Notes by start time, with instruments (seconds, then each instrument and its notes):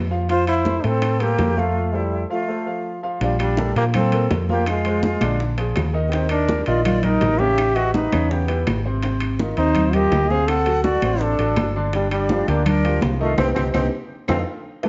Already playing: fingered electric bass F2
0.11 grand piano F3 F4 F5
0.29 grand piano F3 F4 F5, trombone F4, flute C5, high bongo, high conga, high timbale
0.47 trombone E4, flute C5, high bongo, high conga, high timbale, claves
0.65 grand piano A3 A4 C5, high bongo, high conga, low timbale
0.84 fingered electric bass A2, grand piano A3 A4 C5, trombone C4, flute A4, high bongo, high conga, high timbale
1.02 high bongo, high conga, high timbale, claves
1.20 grand piano G3 A4 C5, trombone A#3, flute G4, high bongo, high conga, high timbale
1.38 fingered electric bass F2, high bongo, low bongo, high conga, high timbale, low timbale
1.56 grand piano F3 F4 F5, trombone A3, flute F4, high conga
1.93 trombone G3, grand piano A3 A4 C5, flute E4
2.30 grand piano F3 F4 F5, trombone A3, flute F4
2.48 grand piano A3 A4 C5
2.66 grand piano F3 F4 F5
3.03 grand piano F3 F4 F5
3.21 fingered electric bass A#1, grand piano F3 F4 F5, trombone G3, flute D4, high bongo, high conga, high timbale
3.39 trombone G3, flute D4, high bongo, high conga, high timbale, claves
3.57 grand piano A3 A4 A#4, high bongo, high conga, low timbale
3.75 fingered electric bass A#2, grand piano F3 F4 F5, trombone A#3, flute G4, high bongo, high conga, high timbale
3.94 trombone C4, flute A4, high bongo, high conga, low conga, high timbale, claves
4.12 grand piano A#3 A4 A#4, high bongo, high conga, high timbale
4.31 fingered electric bass F2, high bongo, low bongo, high conga, high timbale, low timbale
4.49 grand piano F3 F4 F5, trombone A#3, flute G4, high conga
4.66 trombone G#3, high bongo, high conga, high timbale, claves
4.71 flute F4
4.85 grand piano G#3 G#4 C5, high bongo, high conga, high timbale
5.02 trombone G#3, flute F4, high bongo, high conga, low timbale
5.21 fingered electric bass A#1, grand piano D3 D4 D5, high bongo, high conga, high timbale, claves
5.40 high bongo, high conga
5.57 grand piano F3 F4 G#4, high bongo, high conga, high timbale
5.76 fingered electric bass D#2, high bongo, low bongo, high conga, high timbale, low timbale, claves
5.93 grand piano D#3 D#4 D#5
6.07 trombone B3, flute G4
6.12 grand piano D#3 D#4 D#5, trombone C4, high bongo, high conga, high timbale
6.29 trombone D4, flute A#4, high bongo, high conga, high timbale, claves
6.48 grand piano G3 G4 A#4, high bongo, high conga, low timbale
6.66 fingered electric bass A#1, grand piano D#3 D#4 D#5, trombone F4, flute D5, high bongo, high conga, high timbale
6.84 trombone F4, flute D5, high bongo, high conga, low conga, high timbale, claves
7.03 grand piano G3 G4 A#4, trombone D#4, flute A#4, high bongo, high conga, low conga, high timbale
7.21 fingered electric bass A1, high bongo, low bongo, high conga, high timbale, low timbale
7.39 grand piano C#3 C#4 C#5, trombone G4, flute E5, high conga
7.58 high bongo, high conga, high timbale, claves
7.75 grand piano E3 E4 G4, trombone F#4, flute D#5, high bongo, high conga, high timbale
7.94 trombone D#4, flute B4, high bongo, high conga, low timbale
8.12 fingered electric bass E2, grand piano C#3 C#4 C#5, high bongo, high conga, high timbale, claves
8.30 trombone B3, flute G4, high bongo, high conga
8.48 grand piano E3 E4 G4, high bongo, high conga, high timbale
8.67 fingered electric bass G#1, high bongo, low bongo, high conga, high timbale, low timbale, claves
8.85 grand piano C3 C4 C5
9.03 grand piano C3 C4 C5, high bongo, high conga, high timbale
9.20 high bongo, high conga, high timbale, claves
9.39 grand piano D#3 D#4 F4, high bongo, high conga, low timbale
9.57 fingered electric bass D#2, grand piano C3 C4 C5, trombone D#4, flute C5, high bongo, high conga, high timbale
9.75 high bongo, high conga, low conga, high timbale, claves
9.93 grand piano D#3 D#4 F4, trombone G4, flute D#5, high bongo, high conga, low conga, high timbale
10.11 fingered electric bass D2, high bongo, low bongo, high conga, high timbale, low timbale
10.29 grand piano C3 C4 C5, trombone G#4, flute F5, high conga
10.47 trombone A4, flute F#5, high bongo, high conga, high timbale, claves
10.66 grand piano F#3 F#4 A4, high bongo, high conga, high timbale
10.84 trombone F#4, flute D5, high bongo, high conga, low timbale
11.02 fingered electric bass A1, grand piano C3 C4 C5, high bongo, high conga, high timbale, claves
11.21 trombone D4, flute A4, high bongo, high conga
11.38 fingered electric bass A1, grand piano F#3 F#4 A4, high bongo, high conga, high timbale
11.56 fingered electric bass G1, high bongo, low bongo, high conga, high timbale, low timbale, claves
11.76 grand piano D3 D4 D5
11.93 grand piano D3 D4 D5, trombone G3, flute D4, high bongo, high conga, high timbale
12.11 trombone G3, flute D4, high bongo, high conga, high timbale, claves
12.29 grand piano F3 F4 G4, high bongo, high conga, low timbale
12.48 fingered electric bass D2, grand piano D3 D4 D5, trombone A#3, flute G4, high bongo, high conga, high timbale
12.66 trombone D4, flute A#4, high bongo, high conga, low conga, high timbale, claves
12.84 grand piano F3 F4 G4, high bongo, high conga, high timbale
13.01 fingered electric bass C2, high bongo, low bongo, high conga, high timbale, low timbale
13.20 grand piano D#3 D#4 D#5, trombone A3, flute F4
13.38 fingered electric bass C2, grand piano C4 D#4 G4, trombone C4, flute G4, low bongo, high conga, high timbale, claves
13.55 fingered electric bass C2, trombone C4, grand piano C4 D#4 G4, flute G4, low bongo, high conga, high timbale, claves
13.73 fingered electric bass C2, trombone C4, grand piano C4 D#4 G4, flute G4, low bongo, high conga, high timbale, claves
14.28 fingered electric bass F2, trombone C4, grand piano D#4 F4 A4, flute F4, low bongo, high conga, high timbale, claves
14.83 grand piano E3 G3 A3, high bongo, high conga, high timbale